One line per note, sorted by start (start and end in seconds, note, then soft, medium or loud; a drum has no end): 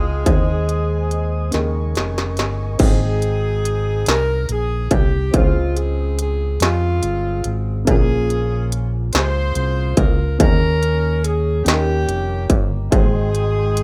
0.00 0.23 C#2 medium
0.00 0.21 F3 medium
0.00 1.96 G#3 medium
0.00 0.22 C4 soft
0.00 1.93 C4 soft
0.00 0.23 D#4 soft
0.00 1.94 D#4 medium
0.00 0.23 F4 medium
0.00 0.25 F4 soft
0.00 1.98 G#4 medium
0.00 0.24 F5 soft
0.00 0.24 G5 medium
0.00 0.25 G5 soft
0.00 0.25 D#6 medium
0.24 1.50 D#2 medium
0.24 1.49 D#3 medium
0.24 1.52 G#3 medium
0.24 1.53 C4 medium
0.24 1.51 D#4 medium
0.24 1.52 G#4 medium
0.24 1.52 C5 medium
0.24 1.54 C5 medium
0.24 1.51 D#5 soft
0.24 2.78 G#5 soft
0.24 1.52 D#6 medium
0.24 kick medium
0.24 closed hi-hat medium
0.69 closed hi-hat soft
1.11 closed hi-hat medium
1.51 1.93 D#2 medium
1.51 2.80 C#3 medium
1.51 2.76 D#3 medium
1.51 2.79 A#3 medium
1.51 2.77 D#4 medium
1.51 2.80 G#4 medium
1.51 2.79 A#4 medium
1.51 2.81 A#4 medium
1.51 2.79 D#5 soft
1.51 2.79 C#6 medium
1.51 snare soft
1.51 closed hi-hat medium
1.95 2.38 F1 medium
1.95 snare medium
1.95 closed hi-hat medium
2.18 snare medium
2.37 2.77 G1 medium
2.37 snare medium
2.37 closed hi-hat soft
2.77 4.03 G#1 medium
2.77 4.03 G#2 medium
2.77 5.30 G#3 soft
2.77 5.29 C4 medium
2.77 5.29 D#4 medium
2.77 5.30 G5 soft
2.77 kick loud
2.77 closed hi-hat medium
2.77 crash medium
2.81 4.04 C4 medium
2.81 4.04 D#4 medium
2.81 4.04 G#4 loud
2.81 5.31 C5 medium
3.22 closed hi-hat soft
3.65 closed hi-hat medium
4.06 4.46 C2 medium
4.06 4.50 A#4 loud
4.06 snare medium
4.06 closed hi-hat medium
4.49 4.88 A#1 medium
4.49 4.90 G#4 medium
4.49 closed hi-hat medium
4.91 5.31 C2 medium
4.91 5.35 G4 medium
4.91 kick medium
4.91 closed hi-hat medium
5.31 6.57 C#2 medium
5.31 6.56 C#3 medium
5.31 7.83 G#3 medium
5.31 7.82 C4 medium
5.31 6.57 C4 medium
5.31 5.41 E4 soft
5.31 5.77 F4 medium
5.31 7.83 G#4 medium
5.31 kick loud
5.31 closed hi-hat medium
5.35 6.57 G#3 medium
5.35 7.84 C5 medium
5.40 7.86 F4 medium
5.77 6.19 G#4 medium
5.77 closed hi-hat soft
6.19 6.59 G#4 loud
6.19 closed hi-hat medium
6.60 6.99 F2 medium
6.60 7.85 G#3 medium
6.60 7.85 C4 medium
6.60 7.57 F4 medium
6.60 snare medium
6.60 closed hi-hat medium
7.03 7.42 G1 medium
7.03 closed hi-hat medium
7.44 7.84 G#1 medium
7.44 closed hi-hat medium
7.85 9.10 A#1 loud
7.85 9.10 A#2 medium
7.85 10.35 A#3 medium
7.85 7.93 C4 soft
7.85 10.36 F4 soft
7.85 10.36 G#4 medium
7.85 kick loud
7.85 closed hi-hat medium
7.89 8.96 C#4 medium
7.89 10.37 C#4 medium
7.89 8.96 F4 medium
7.89 8.69 G#4 loud
7.89 10.37 A#4 medium
8.30 closed hi-hat soft
8.72 closed hi-hat medium
9.13 9.53 C#2 medium
9.13 10.36 F4 medium
9.13 10.36 G#4 medium
9.13 9.94 C5 loud
9.13 snare medium
9.13 closed hi-hat medium
9.55 9.94 C2 loud
9.55 closed hi-hat medium
9.97 10.36 C#2 medium
9.97 10.39 A#4 loud
9.97 kick medium
9.97 closed hi-hat medium
10.39 11.62 D#2 loud
10.39 11.62 D#3 medium
10.39 11.63 A#3 medium
10.39 11.64 C#4 medium
10.39 11.63 C#4 medium
10.39 11.65 D#4 soft
10.39 11.66 G#4 soft
10.39 11.20 A#4 loud
10.39 11.67 A#4 medium
10.39 kick loud
10.39 closed hi-hat medium
10.83 closed hi-hat medium
11.23 11.66 G#4 medium
11.23 closed hi-hat medium
11.64 12.05 D#2 loud
11.64 12.88 D#3 medium
11.64 12.92 A#3 medium
11.64 12.89 A#3 medium
11.64 12.92 C#4 medium
11.64 12.89 C#4 medium
11.64 12.92 D#4 medium
11.64 12.56 G4 loud
11.64 12.93 G4 medium
11.64 11.73 G#4 soft
11.64 snare medium
11.64 closed hi-hat medium
11.74 12.96 A#4 medium
12.07 12.46 F1 medium
12.07 closed hi-hat medium
12.50 12.89 G1 medium
12.50 kick medium
12.50 closed hi-hat medium
12.90 13.83 G#1 loud
12.90 13.83 G#2 medium
12.90 13.83 G#3 medium
12.90 13.83 C4 soft
12.90 13.83 D#4 medium
12.90 13.83 G#4 loud
12.90 13.83 D#5 soft
12.90 13.83 G5 soft
12.90 13.83 G5 medium
12.90 13.83 C6 medium
12.90 kick loud
12.90 closed hi-hat medium
12.94 13.83 C4 medium
12.94 13.83 C5 medium
13.35 closed hi-hat soft
13.77 closed hi-hat medium